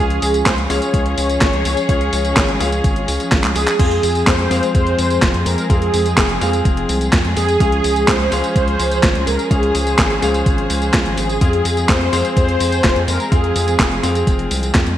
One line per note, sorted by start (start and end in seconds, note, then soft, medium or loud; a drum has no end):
0.00 0.19 C#2 loud
0.00 11.37 F3 medium
0.00 11.37 G#3 medium
0.00 0.67 C#4 medium
0.00 3.76 C#4 medium
0.00 0.67 F4 medium
0.00 0.48 G#4 loud
0.00 0.67 G#4 medium
0.00 3.76 G#4 medium
0.00 0.67 F5 medium
0.10 closed hi-hat soft
0.22 0.43 C#2 medium
0.22 open hi-hat loud
0.22 tambourine medium
0.34 closed hi-hat soft
0.34 tambourine soft
0.46 0.67 C#2 loud
0.46 0.57 C5 loud
0.46 kick loud
0.46 snare loud
0.46 clap loud
0.46 closed hi-hat loud
0.46 tambourine soft
0.58 closed hi-hat soft
0.70 0.80 C#2 medium
0.70 1.86 C#4 medium
0.70 1.86 F4 medium
0.70 1.86 G#4 medium
0.70 3.28 C#5 loud
0.70 1.86 F5 loud
0.70 open hi-hat loud
0.70 tambourine medium
0.82 closed hi-hat soft
0.82 tambourine soft
0.94 1.14 C#2 loud
0.94 kick loud
0.94 closed hi-hat loud
0.94 tambourine soft
1.06 closed hi-hat soft
1.17 1.38 C#2 medium
1.17 open hi-hat loud
1.17 tambourine medium
1.29 closed hi-hat soft
1.29 tambourine soft
1.41 1.52 G#1 medium
1.41 kick loud
1.41 snare loud
1.41 clap loud
1.41 closed hi-hat loud
1.41 tambourine soft
1.53 1.63 C#2 loud
1.53 closed hi-hat soft
1.65 1.75 C#2 loud
1.65 open hi-hat loud
1.65 tambourine medium
1.77 closed hi-hat soft
1.77 tambourine soft
1.89 2.09 C#2 medium
1.89 2.58 C#4 medium
1.89 2.58 F4 medium
1.89 2.58 G#4 medium
1.89 2.58 F5 medium
1.89 kick loud
1.89 closed hi-hat loud
1.89 tambourine soft
2.01 closed hi-hat soft
2.13 2.33 C#2 medium
2.13 open hi-hat loud
2.13 tambourine medium
2.25 closed hi-hat soft
2.25 tambourine soft
2.37 2.57 G#1 loud
2.37 kick loud
2.37 snare loud
2.37 clap loud
2.37 closed hi-hat loud
2.37 tambourine soft
2.49 closed hi-hat soft
2.60 2.81 C#2 loud
2.60 3.77 C#4 loud
2.60 3.77 F4 medium
2.60 3.77 G#4 medium
2.60 3.77 F5 loud
2.60 open hi-hat loud
2.60 tambourine medium
2.72 closed hi-hat soft
2.72 tambourine soft
2.84 3.05 G#1 loud
2.84 kick loud
2.84 closed hi-hat loud
2.84 tambourine soft
2.96 closed hi-hat soft
3.08 3.18 C#2 medium
3.08 open hi-hat loud
3.08 tambourine medium
3.20 closed hi-hat soft
3.20 tambourine soft
3.32 3.42 G#1 loud
3.32 kick loud
3.32 snare loud
3.32 clap loud
3.32 closed hi-hat loud
3.32 tambourine soft
3.44 3.54 C#2 medium
3.44 clap medium
3.44 closed hi-hat soft
3.56 3.66 C#2 medium
3.56 4.29 G#4 loud
3.56 open hi-hat loud
3.56 tambourine medium
3.68 clap loud
3.68 closed hi-hat soft
3.68 tambourine soft
3.79 4.00 F2 loud
3.79 4.48 C4 medium
3.79 7.57 C4 medium
3.79 4.48 F4 medium
3.79 4.48 G#4 medium
3.79 14.98 G#4 medium
3.79 4.48 F5 medium
3.79 kick loud
3.79 closed hi-hat medium
3.79 tambourine soft
3.79 crash medium
3.91 closed hi-hat soft
4.03 4.24 F2 medium
4.03 open hi-hat loud
4.03 tambourine medium
4.15 closed hi-hat soft
4.15 tambourine soft
4.27 4.48 F2 loud
4.27 4.73 C5 loud
4.27 kick loud
4.27 snare loud
4.27 clap loud
4.27 closed hi-hat loud
4.27 tambourine soft
4.39 closed hi-hat soft
4.51 4.61 F2 medium
4.51 5.67 C4 medium
4.51 5.67 F4 medium
4.51 5.67 G#4 medium
4.51 5.67 F5 loud
4.51 open hi-hat loud
4.51 tambourine medium
4.63 closed hi-hat soft
4.63 tambourine soft
4.75 4.95 F2 medium
4.75 5.48 C5 loud
4.75 kick loud
4.75 closed hi-hat loud
4.75 tambourine soft
4.87 closed hi-hat soft
4.98 5.19 F2 medium
4.98 open hi-hat loud
4.98 tambourine medium
5.10 closed hi-hat soft
5.10 tambourine soft
5.22 5.32 F1 medium
5.22 kick loud
5.22 snare loud
5.22 clap loud
5.22 closed hi-hat loud
5.22 tambourine soft
5.34 5.44 F2 loud
5.34 closed hi-hat soft
5.46 5.56 F2 loud
5.46 5.71 A#4 loud
5.46 open hi-hat loud
5.46 tambourine medium
5.58 closed hi-hat soft
5.58 tambourine soft
5.70 5.90 F2 medium
5.70 6.38 C4 medium
5.70 6.38 F4 medium
5.70 7.09 G#4 loud
5.70 6.38 G#4 medium
5.70 6.38 F5 medium
5.70 kick loud
5.70 closed hi-hat medium
5.70 tambourine soft
5.82 closed hi-hat soft
5.94 6.14 F2 medium
5.94 open hi-hat loud
5.94 tambourine medium
6.06 closed hi-hat soft
6.06 tambourine soft
6.17 6.38 F1 medium
6.17 kick loud
6.17 snare loud
6.17 clap loud
6.17 closed hi-hat loud
6.17 tambourine soft
6.29 closed hi-hat soft
6.41 6.62 F2 loud
6.41 7.57 C4 loud
6.41 7.57 F4 medium
6.41 7.57 G#4 medium
6.41 7.57 F5 loud
6.41 open hi-hat loud
6.41 tambourine medium
6.53 closed hi-hat soft
6.53 tambourine soft
6.65 6.86 F1 loud
6.65 kick loud
6.65 closed hi-hat medium
6.65 tambourine soft
6.77 closed hi-hat soft
6.89 7.09 C2 loud
6.89 open hi-hat loud
6.89 tambourine medium
7.01 closed hi-hat soft
7.01 tambourine soft
7.13 7.23 F2 medium
7.13 kick loud
7.13 snare loud
7.13 clap loud
7.13 closed hi-hat medium
7.13 tambourine soft
7.25 7.35 F2 loud
7.25 closed hi-hat soft
7.37 7.57 F2 medium
7.37 8.10 G#4 loud
7.37 open hi-hat loud
7.37 tambourine medium
7.49 closed hi-hat soft
7.49 tambourine soft
7.60 7.81 C#2 loud
7.60 9.49 C#4 medium
7.60 8.29 C#4 medium
7.60 8.29 F4 medium
7.60 8.29 G#4 medium
7.60 8.29 F5 medium
7.60 kick loud
7.60 closed hi-hat medium
7.60 tambourine soft
7.72 closed hi-hat soft
7.84 8.05 C#2 medium
7.84 open hi-hat loud
7.84 tambourine medium
7.96 closed hi-hat soft
7.96 tambourine soft
8.08 8.28 C#2 loud
8.08 8.54 C5 loud
8.08 kick loud
8.08 snare loud
8.08 clap loud
8.08 closed hi-hat medium
8.08 tambourine soft
8.20 closed hi-hat soft
8.32 8.42 C#2 medium
8.32 9.48 C#4 medium
8.32 9.48 F4 medium
8.32 9.48 G#4 medium
8.32 9.48 F5 loud
8.32 open hi-hat loud
8.32 tambourine medium
8.44 closed hi-hat soft
8.44 tambourine soft
8.55 8.76 C#2 loud
8.55 9.29 C5 loud
8.55 kick loud
8.55 closed hi-hat medium
8.55 tambourine soft
8.68 closed hi-hat soft
8.79 9.00 C#2 medium
8.79 open hi-hat loud
8.79 tambourine medium
8.91 closed hi-hat soft
8.91 tambourine soft
9.03 9.13 G#1 medium
9.03 kick loud
9.03 snare loud
9.03 clap loud
9.03 closed hi-hat medium
9.03 tambourine soft
9.15 9.25 C#2 loud
9.15 closed hi-hat soft
9.27 9.37 C#2 loud
9.27 9.51 A#4 loud
9.27 open hi-hat loud
9.27 tambourine medium
9.39 closed hi-hat soft
9.39 tambourine soft
9.51 9.71 C#2 medium
9.51 10.19 C#4 medium
9.51 10.19 F4 medium
9.51 10.90 G#4 loud
9.51 10.19 G#4 medium
9.51 11.39 C5 medium
9.51 10.19 F5 medium
9.51 kick loud
9.51 closed hi-hat medium
9.51 tambourine soft
9.63 closed hi-hat soft
9.75 9.95 C#2 medium
9.75 open hi-hat loud
9.75 tambourine medium
9.87 closed hi-hat soft
9.87 tambourine soft
9.98 10.19 G#1 medium
9.98 kick loud
9.98 snare loud
9.98 clap loud
9.98 closed hi-hat medium
9.98 tambourine soft
10.10 closed hi-hat soft
10.22 10.43 C#2 loud
10.22 11.38 C#4 loud
10.22 11.38 F4 medium
10.22 11.38 G#4 medium
10.22 11.38 F5 loud
10.22 open hi-hat loud
10.22 tambourine medium
10.34 closed hi-hat soft
10.34 tambourine soft
10.46 10.67 G#1 loud
10.46 kick loud
10.46 closed hi-hat medium
10.46 tambourine soft
10.58 closed hi-hat soft
10.70 10.90 C#2 medium
10.70 open hi-hat loud
10.70 tambourine medium
10.82 closed hi-hat soft
10.82 tambourine soft
10.94 11.04 C#2 loud
10.94 kick loud
10.94 snare loud
10.94 clap loud
10.94 closed hi-hat medium
10.94 tambourine soft
11.06 11.16 G#1 medium
11.06 closed hi-hat soft
11.17 11.38 G#1 medium
11.17 11.91 G#4 loud
11.17 open hi-hat loud
11.17 tambourine medium
11.29 closed hi-hat soft
11.29 tambourine soft
11.41 11.62 F2 loud
11.41 14.98 F3 medium
11.41 14.98 G#3 medium
11.41 12.10 C4 medium
11.41 14.98 C4 medium
11.41 12.10 F4 medium
11.41 12.10 G#4 medium
11.41 12.10 F5 medium
11.41 kick loud
11.41 closed hi-hat medium
11.41 tambourine soft
11.53 closed hi-hat soft
11.65 11.86 F2 medium
11.65 open hi-hat loud
11.65 tambourine medium
11.77 closed hi-hat soft
11.77 tambourine soft
11.89 12.09 F2 loud
11.89 12.33 C5 loud
11.89 kick loud
11.89 snare loud
11.89 clap loud
11.89 closed hi-hat medium
11.89 tambourine soft
12.01 closed hi-hat soft
12.13 12.23 F2 medium
12.13 13.29 C4 medium
12.13 13.29 F4 medium
12.13 13.29 G#4 medium
12.13 13.29 F5 loud
12.13 open hi-hat loud
12.13 tambourine medium
12.25 closed hi-hat soft
12.25 tambourine soft
12.37 12.57 F2 medium
12.37 13.10 C5 loud
12.37 kick loud
12.37 closed hi-hat medium
12.37 tambourine soft
12.49 closed hi-hat soft
12.60 12.81 F2 medium
12.60 open hi-hat loud
12.60 tambourine medium
12.72 closed hi-hat soft
12.72 tambourine soft
12.84 12.94 F1 medium
12.84 kick loud
12.84 snare loud
12.84 clap loud
12.84 closed hi-hat medium
12.84 tambourine soft
12.96 13.06 F2 loud
12.96 closed hi-hat soft
13.08 13.18 F2 loud
13.08 13.32 A#4 loud
13.08 open hi-hat loud
13.08 tambourine medium
13.20 closed hi-hat soft
13.20 tambourine soft
13.32 13.52 F2 medium
13.32 14.00 C4 medium
13.32 14.00 F4 medium
13.32 14.71 G#4 loud
13.32 14.00 G#4 medium
13.32 14.00 F5 medium
13.32 kick loud
13.32 closed hi-hat medium
13.32 tambourine soft
13.44 closed hi-hat soft
13.56 13.76 F2 loud
13.56 open hi-hat loud
13.56 tambourine medium
13.68 closed hi-hat soft
13.68 tambourine soft
13.79 14.00 F1 loud
13.79 kick loud
13.79 snare loud
13.79 clap loud
13.79 closed hi-hat loud
13.79 tambourine soft
13.91 closed hi-hat soft
14.03 14.24 F2 loud
14.03 14.98 C4 loud
14.03 14.98 F4 medium
14.03 14.98 G#4 medium
14.03 14.98 F5 loud
14.03 open hi-hat loud
14.03 tambourine medium
14.15 closed hi-hat soft
14.15 tambourine soft
14.27 14.48 F1 loud
14.27 kick loud
14.27 closed hi-hat loud
14.27 tambourine soft
14.39 closed hi-hat soft
14.51 14.71 C2 loud
14.51 open hi-hat loud
14.51 tambourine medium
14.63 closed hi-hat soft
14.63 tambourine soft
14.75 14.85 F2 medium
14.75 kick loud
14.75 snare loud
14.75 clap loud
14.75 closed hi-hat medium
14.75 tambourine soft
14.87 14.97 F2 loud
14.87 closed hi-hat soft